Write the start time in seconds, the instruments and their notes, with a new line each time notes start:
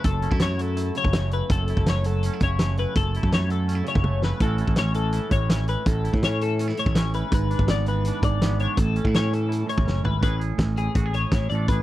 Already playing: clean electric guitar F#3 A3
0.04 picked electric bass F#1, clean electric guitar F#2 A4, kick, closed hi-hat
0.22 clean electric guitar C#4, closed hi-hat
0.31 picked electric bass F#2, clean electric guitar E4, kick
0.39 clean electric guitar A3 C#5, snare, closed hi-hat
0.57 clean electric guitar F#3 A4, closed hi-hat
0.77 clean electric guitar E4, closed hi-hat
0.95 clean electric guitar C#3 C#5, closed hi-hat
1.04 picked electric bass F#1, kick
1.13 clean electric guitar A3, snare, closed hi-hat
1.31 clean electric guitar E4 B4, closed hi-hat
1.50 picked electric bass F#1, clean electric guitar F#2 A4, kick, closed hi-hat
1.68 clean electric guitar E4, closed hi-hat
1.77 picked electric bass F#1, kick
1.86 clean electric guitar A3 C#5, snare, closed hi-hat
2.04 clean electric guitar F#3 A4, closed hi-hat
2.23 clean electric guitar C#4, closed hi-hat
2.34 clean electric guitar E4
2.40 picked electric bass F#1, clean electric guitar C#3 C#5, kick, closed hi-hat
2.59 clean electric guitar A3, snare, closed hi-hat
2.77 clean electric guitar E4 B4, closed hi-hat
2.95 picked electric bass F#1, clean electric guitar F#2 A4, kick, closed hi-hat
3.14 clean electric guitar E4, closed hi-hat
3.23 picked electric bass F#2, kick
3.32 clean electric guitar A3 C#5, snare, closed hi-hat
3.49 clean electric guitar F#3 A4, closed hi-hat
3.68 clean electric guitar C#4, closed hi-hat
3.75 clean electric guitar E4
3.84 clean electric guitar C#3, closed hi-hat
3.88 clean electric guitar C#5
3.95 picked electric bass F#1, kick
4.04 clean electric guitar A3, high tom
4.22 clean electric guitar E4 B4, snare
4.40 picked electric bass A1, clean electric guitar A2 E3 C#4 E4 A4, kick, closed hi-hat
4.44 clean electric guitar F#4
4.58 clean electric guitar E4, closed hi-hat
4.67 picked electric bass A1, kick
4.76 clean electric guitar C#4 C#5, snare, closed hi-hat
4.94 clean electric guitar E3 A4, closed hi-hat
5.13 clean electric guitar E4, closed hi-hat
5.29 picked electric bass A1, clean electric guitar A2 C#5, kick, closed hi-hat
5.49 clean electric guitar C#4, snare, closed hi-hat
5.68 clean electric guitar E4 B4, closed hi-hat
5.86 picked electric bass A1, clean electric guitar A2 A4, kick, closed hi-hat
6.04 clean electric guitar E4, closed hi-hat
6.13 picked electric bass A2, kick
6.23 clean electric guitar C#4 C#5, snare, closed hi-hat
6.41 clean electric guitar E3 A4, closed hi-hat
6.59 clean electric guitar C#4, closed hi-hat
6.68 clean electric guitar E4, snare
6.77 clean electric guitar A2 C#5, closed hi-hat
6.86 picked electric bass A1, kick
6.95 clean electric guitar C#4, snare, closed hi-hat
7.14 clean electric guitar E4 B4, closed hi-hat
7.31 picked electric bass G#1, clean electric guitar G#2 B4, kick, closed hi-hat
7.51 clean electric guitar D4, closed hi-hat
7.59 picked electric bass G#1, kick
7.68 clean electric guitar B3 D5, snare, closed hi-hat
7.86 clean electric guitar E3 B4, closed hi-hat
8.05 clean electric guitar D4, closed hi-hat
8.22 picked electric bass G#1, clean electric guitar G#2 D5, kick, closed hi-hat
8.42 clean electric guitar B3, snare, closed hi-hat
8.59 clean electric guitar D4 C#5, closed hi-hat
8.77 picked electric bass A1, clean electric guitar A2 A4, kick, closed hi-hat
8.96 clean electric guitar C#4, closed hi-hat
9.04 picked electric bass A2, clean electric guitar E4, kick
9.14 clean electric guitar C#4 C#5, snare, closed hi-hat
9.31 clean electric guitar E3 A4, closed hi-hat
9.49 clean electric guitar E4, closed hi-hat
9.67 clean electric guitar A2 C#5, closed hi-hat
9.78 picked electric bass A1, kick
9.85 picked electric bass F#1, clean electric guitar C#4, snare
10.04 picked electric bass G#1, clean electric guitar E4 B4, floor tom
10.21 picked electric bass A1, clean electric guitar A2 C#4 E4 G#4 B4, kick, closed hi-hat
10.39 clean electric guitar G#4, closed hi-hat
10.58 picked electric bass A1, clean electric guitar E3, kick, snare, closed hi-hat
10.77 clean electric guitar E4 G#4, closed hi-hat
10.95 picked electric bass A1, clean electric guitar F#4, kick, closed hi-hat
11.06 clean electric guitar G#4
11.14 clean electric guitar A2 C#5, closed hi-hat
11.32 picked electric bass A1, clean electric guitar E4, kick, snare, closed hi-hat
11.50 picked electric bass A1, clean electric guitar A2 A3 D5, closed hi-hat
11.55 clean electric guitar D4 A4
11.68 clean electric guitar G#4 B4, kick, closed hi-hat